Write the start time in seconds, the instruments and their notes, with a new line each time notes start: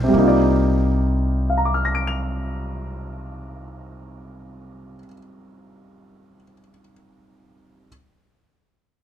Already playing: upright bass B1, grand piano G3 C4 F4 A#4 D5 F5 G5
0.04 grand piano C3
0.08 grand piano G3
0.13 upright bass C2, grand piano A#3
0.18 grand piano D#4
0.23 grand piano F4
0.28 grand piano D5
1.50 grand piano F5
1.57 grand piano A#5
1.65 grand piano D6
1.74 grand piano F6
1.85 grand piano A#6
1.95 grand piano D7
2.07 grand piano F7